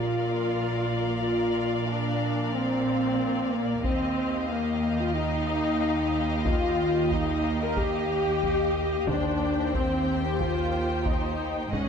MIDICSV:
0, 0, Header, 1, 9, 480
1, 0, Start_track
1, 0, Key_signature, -3, "major"
1, 0, Tempo, 653595
1, 910, Time_signature, 4, 2, 24, 8
1, 7151, Tempo, 665927
1, 8701, End_track
2, 0, Start_track
2, 0, Title_t, "Violin section"
2, 0, Program_c, 0, 48
2, 0, Note_on_c, 0, 77, 49
2, 2800, Note_off_c, 0, 77, 0
2, 2834, Note_on_c, 0, 77, 55
2, 6644, Note_off_c, 0, 77, 0
2, 6675, Note_on_c, 0, 79, 60
2, 8562, Note_off_c, 0, 79, 0
2, 8600, Note_on_c, 0, 78, 46
2, 8701, Note_off_c, 0, 78, 0
2, 8701, End_track
3, 0, Start_track
3, 0, Title_t, "Violin section"
3, 0, Program_c, 1, 48
3, 0, Note_on_c, 1, 70, 42
3, 0, Note_on_c, 1, 74, 45
3, 2793, Note_off_c, 1, 70, 0
3, 2797, Note_off_c, 1, 74, 0
3, 2824, Note_on_c, 1, 75, 52
3, 2825, Note_on_c, 1, 67, 51
3, 6640, Note_off_c, 1, 67, 0
3, 6640, Note_off_c, 1, 75, 0
3, 6676, Note_on_c, 1, 67, 50
3, 6679, Note_on_c, 1, 72, 52
3, 8563, Note_off_c, 1, 67, 0
3, 8564, Note_off_c, 1, 72, 0
3, 8580, Note_on_c, 1, 75, 44
3, 8584, Note_on_c, 1, 68, 43
3, 8701, Note_off_c, 1, 68, 0
3, 8701, Note_off_c, 1, 75, 0
3, 8701, End_track
4, 0, Start_track
4, 0, Title_t, "French horn section"
4, 0, Program_c, 2, 60
4, 0, Note_on_c, 2, 65, 61
4, 883, Note_off_c, 2, 65, 0
4, 892, Note_on_c, 2, 65, 71
4, 1367, Note_on_c, 2, 62, 74
4, 1371, Note_off_c, 2, 65, 0
4, 1855, Note_on_c, 2, 60, 78
4, 1858, Note_off_c, 2, 62, 0
4, 2575, Note_on_c, 2, 58, 63
4, 2579, Note_off_c, 2, 60, 0
4, 2820, Note_off_c, 2, 58, 0
4, 2822, Note_on_c, 2, 60, 76
4, 3293, Note_off_c, 2, 60, 0
4, 3300, Note_on_c, 2, 58, 63
4, 3663, Note_off_c, 2, 58, 0
4, 3665, Note_on_c, 2, 65, 70
4, 3773, Note_on_c, 2, 63, 81
4, 3785, Note_off_c, 2, 65, 0
4, 4732, Note_on_c, 2, 65, 80
4, 4738, Note_off_c, 2, 63, 0
4, 5220, Note_off_c, 2, 65, 0
4, 5225, Note_on_c, 2, 63, 82
4, 5487, Note_off_c, 2, 63, 0
4, 5595, Note_on_c, 2, 70, 72
4, 5698, Note_on_c, 2, 67, 86
4, 5709, Note_off_c, 2, 70, 0
4, 6646, Note_off_c, 2, 67, 0
4, 6665, Note_on_c, 2, 62, 77
4, 7148, Note_off_c, 2, 62, 0
4, 7162, Note_on_c, 2, 60, 66
4, 7505, Note_off_c, 2, 60, 0
4, 7511, Note_on_c, 2, 67, 61
4, 7628, Note_off_c, 2, 67, 0
4, 7642, Note_on_c, 2, 65, 72
4, 8106, Note_on_c, 2, 63, 63
4, 8113, Note_off_c, 2, 65, 0
4, 8589, Note_on_c, 2, 61, 64
4, 8590, Note_off_c, 2, 63, 0
4, 8701, Note_off_c, 2, 61, 0
4, 8701, End_track
5, 0, Start_track
5, 0, Title_t, "Viola section"
5, 0, Program_c, 3, 48
5, 0, Note_on_c, 3, 65, 55
5, 894, Note_off_c, 3, 65, 0
5, 903, Note_on_c, 3, 65, 54
5, 1377, Note_off_c, 3, 65, 0
5, 1383, Note_on_c, 3, 62, 57
5, 1866, Note_off_c, 3, 62, 0
5, 1869, Note_on_c, 3, 60, 63
5, 2572, Note_off_c, 3, 60, 0
5, 2582, Note_on_c, 3, 58, 52
5, 2823, Note_off_c, 3, 58, 0
5, 2826, Note_on_c, 3, 60, 67
5, 3296, Note_off_c, 3, 60, 0
5, 3305, Note_on_c, 3, 58, 52
5, 3665, Note_off_c, 3, 58, 0
5, 3671, Note_on_c, 3, 65, 59
5, 3785, Note_on_c, 3, 63, 72
5, 3788, Note_off_c, 3, 65, 0
5, 4744, Note_off_c, 3, 63, 0
5, 4745, Note_on_c, 3, 65, 67
5, 5217, Note_off_c, 3, 65, 0
5, 5225, Note_on_c, 3, 63, 59
5, 5580, Note_off_c, 3, 63, 0
5, 5594, Note_on_c, 3, 70, 63
5, 5711, Note_off_c, 3, 70, 0
5, 5715, Note_on_c, 3, 67, 75
5, 6672, Note_on_c, 3, 62, 63
5, 6673, Note_off_c, 3, 67, 0
5, 7141, Note_off_c, 3, 62, 0
5, 7152, Note_on_c, 3, 60, 57
5, 7507, Note_off_c, 3, 60, 0
5, 7508, Note_on_c, 3, 67, 55
5, 7624, Note_off_c, 3, 67, 0
5, 7633, Note_on_c, 3, 65, 64
5, 8099, Note_off_c, 3, 65, 0
5, 8108, Note_on_c, 3, 63, 54
5, 8580, Note_on_c, 3, 61, 52
5, 8590, Note_off_c, 3, 63, 0
5, 8701, Note_off_c, 3, 61, 0
5, 8701, End_track
6, 0, Start_track
6, 0, Title_t, "Timpani"
6, 0, Program_c, 4, 47
6, 6673, Note_on_c, 4, 51, 58
6, 7360, Note_off_c, 4, 51, 0
6, 8701, End_track
7, 0, Start_track
7, 0, Title_t, "Cello section"
7, 0, Program_c, 5, 48
7, 0, Note_on_c, 5, 46, 46
7, 2795, Note_off_c, 5, 46, 0
7, 2825, Note_on_c, 5, 39, 55
7, 6663, Note_off_c, 5, 39, 0
7, 6671, Note_on_c, 5, 39, 54
7, 8561, Note_off_c, 5, 39, 0
7, 8585, Note_on_c, 5, 44, 47
7, 8701, Note_off_c, 5, 44, 0
7, 8701, End_track
8, 0, Start_track
8, 0, Title_t, "Double bass section"
8, 0, Program_c, 6, 48
8, 0, Note_on_c, 6, 34, 46
8, 2796, Note_off_c, 6, 34, 0
8, 2826, Note_on_c, 6, 39, 59
8, 6670, Note_off_c, 6, 39, 0
8, 6678, Note_on_c, 6, 39, 54
8, 8564, Note_off_c, 6, 39, 0
8, 8593, Note_on_c, 6, 32, 45
8, 8701, Note_off_c, 6, 32, 0
8, 8701, End_track
9, 0, Start_track
9, 0, Title_t, "Taiko and cinematic ensemble drums"
9, 2820, Note_on_c, 9, 41, 54
9, 2894, Note_off_c, 9, 41, 0
9, 4742, Note_on_c, 9, 41, 86
9, 4815, Note_off_c, 9, 41, 0
9, 5224, Note_on_c, 9, 41, 61
9, 5297, Note_off_c, 9, 41, 0
9, 5708, Note_on_c, 9, 41, 69
9, 5781, Note_off_c, 9, 41, 0
9, 6190, Note_on_c, 9, 41, 64
9, 6263, Note_off_c, 9, 41, 0
9, 6670, Note_on_c, 9, 41, 82
9, 6743, Note_off_c, 9, 41, 0
9, 7153, Note_on_c, 9, 41, 61
9, 7225, Note_off_c, 9, 41, 0
9, 7627, Note_on_c, 9, 41, 63
9, 7700, Note_off_c, 9, 41, 0
9, 8103, Note_on_c, 9, 41, 66
9, 8175, Note_off_c, 9, 41, 0
9, 8586, Note_on_c, 9, 41, 76
9, 8658, Note_off_c, 9, 41, 0
9, 8701, End_track
0, 0, End_of_file